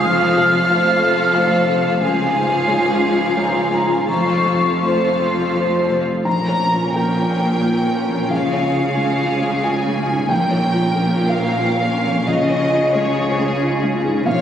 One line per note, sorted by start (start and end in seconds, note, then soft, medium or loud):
0.00 1.97 F3 soft
0.00 1.00 F4 soft
0.00 1.97 F4 medium
0.00 1.98 F5 medium
0.04 1.97 F1 medium
0.04 1.97 F2 medium
0.04 1.98 F2 medium
0.04 3.94 F3 medium
0.04 2.02 A4 medium
0.04 1.36 F6 loud
0.37 0.89 C3 soft
0.37 2.04 A4 soft
0.69 0.99 A3 soft
0.69 0.99 F4 soft
0.69 1.34 C5 soft
0.69 0.99 C5 soft
1.01 1.34 A3 soft
1.01 1.67 F4 soft
1.35 1.65 A3 soft
1.35 1.65 F4 soft
1.35 2.04 C5 soft
1.35 1.66 C5 soft
1.35 2.02 F5 medium
1.68 2.01 C3 soft
1.68 2.33 F4 soft
2.01 4.04 C#2 soft
2.01 4.04 C#2 medium
2.01 4.05 C#2 medium
2.01 4.11 C#3 soft
2.01 4.04 F3 soft
2.01 4.04 F4 medium
2.01 4.04 G#4 medium
2.01 4.04 F5 medium
2.01 3.08 G#5 medium
2.33 2.88 G#2 soft
2.33 5.18 F4 soft
2.67 2.98 G#3 soft
2.67 2.98 F4 soft
2.67 3.36 G#4 soft
2.67 2.98 C#5 soft
3.02 3.35 G#3 soft
3.02 3.71 C#4 soft
3.37 3.68 G#3 soft
3.37 3.68 F4 soft
3.37 4.11 G#4 soft
3.37 3.68 C#5 soft
3.37 4.04 A#5 medium
3.71 4.08 G#2 soft
3.71 4.11 C#4 soft
4.07 6.01 F1 soft
4.07 6.22 F2 soft
4.07 6.01 F2 soft
4.07 4.80 F3 soft
4.07 7.97 F3 soft
4.07 4.80 F4 soft
4.07 4.81 A4 soft
4.07 4.81 F5 soft
4.07 4.85 C#6 medium
4.45 5.04 C3 soft
4.45 6.29 A4 soft
4.82 6.03 F3 soft
4.82 5.15 A3 soft
4.82 6.03 F4 soft
4.82 5.16 F4 soft
4.82 6.03 A4 soft
4.82 5.53 C5 soft
4.82 5.16 C5 soft
4.82 6.03 F5 soft
4.82 5.55 C6 medium
5.19 5.53 A3 soft
5.19 5.89 F4 soft
5.54 5.87 A3 soft
5.54 5.87 F4 soft
5.54 6.29 C5 soft
5.54 5.87 C5 soft
5.90 6.26 C3 soft
5.90 7.96 F4 soft
6.25 8.26 A#1 soft
6.25 8.27 A#1 soft
6.25 8.26 A#2 soft
6.25 8.33 A#2 soft
6.25 10.26 C#4 soft
6.25 10.26 F4 soft
6.25 8.27 A#4 soft
6.25 6.90 A#5 medium
6.25 6.91 A#5 medium
6.48 6.85 C#5 soft
6.61 8.62 C#4 soft
6.72 7.08 F4 soft
6.94 7.31 A#3 soft
6.94 7.62 A#4 soft
6.94 8.26 G5 soft
6.94 8.31 G5 medium
7.17 7.53 F4 soft
7.29 9.29 C#5 soft
7.40 7.77 A#3 soft
7.62 7.99 F4 soft
7.62 8.33 A#4 soft
7.85 8.21 A#3 soft
7.97 9.96 F4 soft
8.09 8.31 F2 soft
8.30 10.26 C#2 soft
8.30 10.27 C#2 soft
8.30 10.33 C#3 soft
8.30 10.26 C#3 soft
8.30 10.27 G#4 soft
8.30 9.60 F5 soft
8.30 9.62 F5 medium
8.53 8.88 C#5 soft
8.63 10.61 C#4 soft
8.75 9.10 F4 soft
8.96 9.33 G#3 soft
8.96 9.62 G#4 soft
9.19 9.55 F4 soft
9.30 11.27 C#5 soft
9.41 9.78 G#3 soft
9.63 10.00 F4 soft
9.63 10.32 G#4 soft
9.63 10.26 G#5 medium
9.63 10.31 G#5 medium
9.87 10.22 G#3 soft
9.97 11.94 F4 soft
10.09 10.30 G#2 soft
10.29 12.23 A#1 soft
10.29 12.28 A#1 medium
10.29 12.27 A#2 medium
10.29 12.30 A#2 soft
10.29 14.22 C#4 soft
10.29 14.22 F4 soft
10.29 12.24 A#4 soft
10.29 11.24 G5 medium
10.29 11.26 G5 medium
10.51 10.86 C#5 soft
10.63 12.60 C#4 soft
10.73 11.08 F4 soft
10.95 11.31 A#3 soft
10.95 11.60 A#4 soft
11.18 11.53 F4 soft
11.28 13.26 C#5 soft
11.28 12.24 F5 medium
11.28 12.28 F5 medium
11.40 11.75 A#3 soft
11.62 11.97 F4 soft
11.62 12.30 A#4 soft
11.84 12.19 A#3 soft
11.95 13.92 F4 soft
12.06 12.28 F2 soft
12.27 14.22 C#2 medium
12.27 14.22 C#2 soft
12.27 14.22 C#3 medium
12.27 14.29 C#3 medium
12.27 14.22 G#4 medium
12.27 12.89 D#5 medium
12.27 12.94 D#5 medium
12.50 12.85 C#5 soft
12.61 14.41 C#4 soft
12.72 13.07 F4 soft
12.93 13.30 G#3 soft
12.93 13.59 G#4 soft
12.93 13.56 C#5 medium
12.93 13.60 C#5 medium
13.17 13.52 F4 soft
13.27 14.41 C#5 soft
13.39 13.74 G#3 soft
13.61 13.96 F4 soft
13.61 14.29 G#4 soft
13.83 14.18 G#3 soft
13.93 14.41 F4 soft
14.04 14.26 G#2 soft
14.26 14.41 A#1 medium
14.26 14.41 A#2 medium
14.26 14.41 A#2 soft
14.26 14.41 A#3 soft
14.26 14.41 F4 soft
14.26 14.41 C#5 medium
14.26 14.41 F5 medium